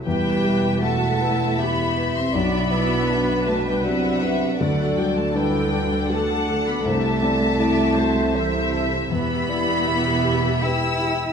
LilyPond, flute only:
\new Staff \with { instrumentName = "Flute" } { \time 3/4 \key e \minor \tempo 4 = 80 b'4 fis''4 e''4 | d''8 b'4. d''8 e''8 | d''4 b'4 a'8 r8 | c''8 d''8 e''4 c''4 |
b'8 d''8 e''4 g''4 | }